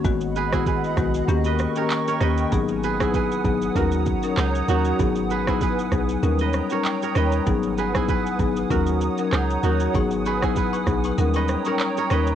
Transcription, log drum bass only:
X:1
M:4/4
L:1/16
Q:"Swing 16ths" 1/4=97
K:G#m
V:1 name="Log drum bass" clef=bass
G,,,6 B,,,2 D,,3 z3 D,,2 | G,,,6 G,,,2 D,,3 z C,,2 D,,2 | G,,,6 B,,,2 D,,3 z3 D,,2 | G,,,6 G,,,2 D,,3 z C,,2 D,,2 |
G,,,6 B,,,2 D,,3 z3 D,,2 |]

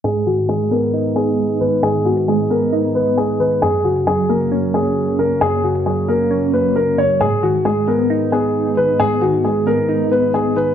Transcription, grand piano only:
X:1
M:4/4
L:1/8
Q:1/4=134
K:G#m
V:1 name="Grand piano"
G F G A2 G2 B | G F G A2 B G B | G F G A2 G2 A | G F G A2 B A c |
G F G A2 G2 B | G F G A2 B G B |]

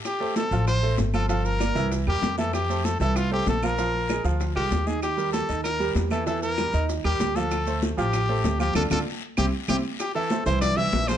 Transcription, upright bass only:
X:1
M:4/4
L:1/8
Q:1/4=193
K:F
V:1 name="Upright bass" clef=bass
z3 A,,,3 G,,,2- | G,,,3 C,,2 E,, F,,2- | F,,3 C,,3 B,,,2- | B,,,3 D,,2 C,, _E,,2- |
_E,,3 E,,3 =E,,2- | E,,3 _E,,2 E,, D,,2- | D,,3 A,,,3 D,,2 | D,, D,, z2 C,, z C,, z |
z3 C,,3 B,,,2 |]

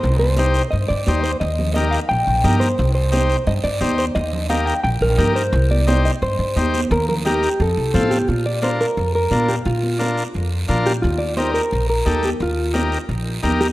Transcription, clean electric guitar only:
X:1
M:4/4
L:1/8
Q:1/4=175
K:Bb
V:1 name="Clean electric guitar"
c c3 e d2 c | e2 e f g3 c- | c c3 e d2 c | e2 f g g B2 c- |
c d2 e c4 | B B G2 A3 G | F d c B2 B2 G | F2 z4 z G |
F d c B2 B2 G | F2 z4 z G |]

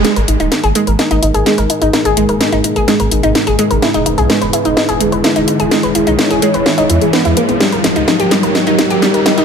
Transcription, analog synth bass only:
X:1
M:4/4
L:1/16
Q:1/4=127
K:G#m
V:1 name="Analog synth bass" clef=bass
z G,,, G,,, D,,, z G,,, z G,,, z G,,, G,,, G,,, z G,,, z G,,, | z G,,, G,,, D,,, z G,,, z G,,, z G,,, G,,, G,,, z G,,, z G,,, | z E,,, E,,, B,,, z E,,, z E,,, z E,,, E,,, E,,, z E,,, z E,,, | z E,,, E,,, B,,, z E,,, z E,,, z E,,, E,, E,,, z E,, z E,,, |
z D,,, D,,, C,, z D,,, z D,,, z D,,, D,,, D,,, z D,,, z D,,, |]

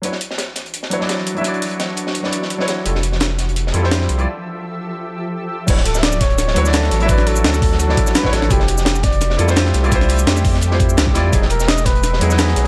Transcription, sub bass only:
X:1
M:4/4
L:1/8
Q:"Swing 16ths" 1/4=170
K:D
V:1 name="Sub bass" clef=bass
z8 | z8 | =F,,,4- F,,, =F,,2 =C,, | z8 |
D,,,4- D,,, D,,2 A,,,- | A,,,2 D,,3 z2 A,,, | =F,,,4- F,,, =F,,2 =C,,- | =C,,2 =F,,4 C,, F,, |
E,,,4- E,,, E,,2 B,,, |]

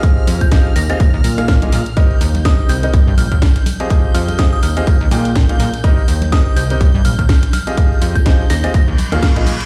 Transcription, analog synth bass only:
X:1
M:4/4
L:1/16
Q:"Swing 16ths" 1/4=124
K:Eb
V:1 name="Analog synth bass" clef=bass
z2 F,,3 z E,, z B,,, E,, B,,2 A,,, z B,, z | z2 E,,3 z C,, z C,, G,, B,,, E,, z4 | z2 F,,3 z E,, z B,,, E,, B,,2 A,,, z B,, z | z2 E,,3 z C,, z C,, G,, B,,, E,, z4 |
z2 F,,3 z E,, z B,,, E,, z E,, z B,,, z2 |]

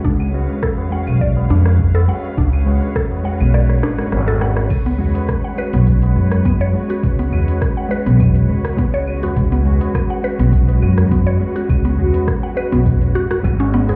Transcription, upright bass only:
X:1
M:4/4
L:1/16
Q:1/4=103
K:none
V:1 name="Upright bass" clef=bass
^C,,3 z4 B,,,3 ^E,,4 z2 | ^C,,3 z4 B,,,3 ^G,,,2 G,,,4 | ^C,,3 z4 B,,,3 ^F,,4 z2 | ^C,,3 z4 B,,,3 C,,6 |
^C,,3 z4 B,,,3 ^F,,4 z2 | ^C,,3 z4 B,,,3 ^G,,,2 G,,,4 |]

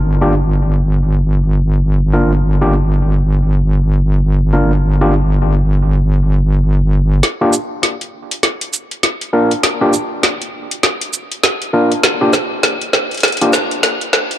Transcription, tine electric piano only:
X:1
M:4/4
L:1/16
Q:"Swing 16ths" 1/4=100
K:Gm
V:1 name="Tine electric piano"
z [B,DFG] z12 [B,DFB] z | z [B,DFG] z12 [B,DFB] z | z [B,DFG] z12 z2 | z [B,DFG] z12 [B,DFB] z |
z [B,DFG] z12 [B,DFB] z | z [B,DFG] z6 z [B,DFG] z6 |]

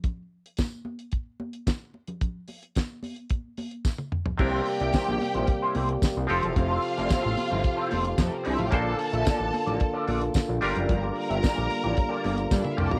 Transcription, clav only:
X:1
M:4/4
L:1/8
Q:1/4=111
K:Cmix
V:1 name="Clav"
z8 | z8 | [C,CDEB]6- [C,CDEB] [F,CFGA]- | [F,CFGA]6- [F,CFGA] z |
[B,,B,DAc]6- [B,,B,DAc] [G,DFGB]- | [G,DFGB]6- [G,DFGB] z |]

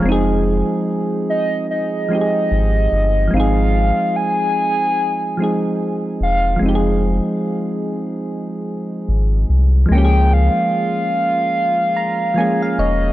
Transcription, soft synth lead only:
X:1
M:4/4
L:1/8
Q:"Swing 16ths" 1/4=73
K:Fm
V:1 name="Soft synth lead"
z3 e e4 | f2 a4 z f | z8 | g f6 e |]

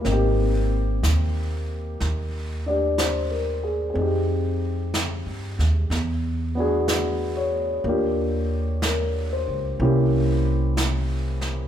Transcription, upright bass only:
X:1
M:4/4
L:1/8
Q:"Swing" 1/4=62
K:Ablyd
V:1 name="Upright bass" clef=bass
A,,,2 E,,2 E,,4 | F,,2- (3F,, G,, E,, =E,,4 | E,,3 _D,, C,,4 |]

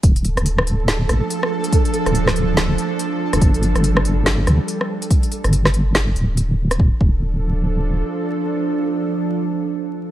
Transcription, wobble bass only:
X:1
M:4/4
L:1/16
Q:"Swing 16ths" 1/4=142
K:Dm
V:1 name="Wobble bass" clef=bass
D,,,3 D,,,6- D,,, A,,, z4 z | z3 D,,,6- D,,, z4 z D,,, | G,,,3 G,,,6- G,,, D,, z4 z | z3 G,,,6- G,,, D,,,6 |
D,,, z D,,,8- D,,,2 z4 | z16 |]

